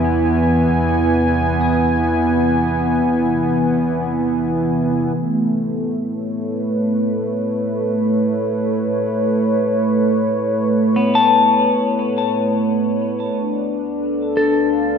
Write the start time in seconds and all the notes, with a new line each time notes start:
Already playing: E2 C3 E3 B3 E4 G#5
0.04 B3
1.61 G#4
5.15 A2 A3
6.12 C#5
6.42 B4
10.96 B3
11.15 A5
13.35 D2
13.39 D4
13.96 A4
14.37 A4
14.53 F5